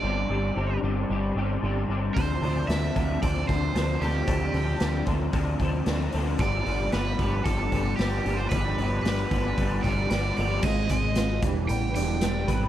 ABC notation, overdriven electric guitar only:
X:1
M:4/4
L:1/16
Q:1/4=113
K:Gmix
V:1 name="Overdriven electric guitar"
d6 z8 z2 | c4 e4 d2 c4 G2- | G6 z8 z2 | d4 B4 A4 G3 c |
B4 B6 d2 d2 d2 | _e2 e4 z2 g2 g6 |]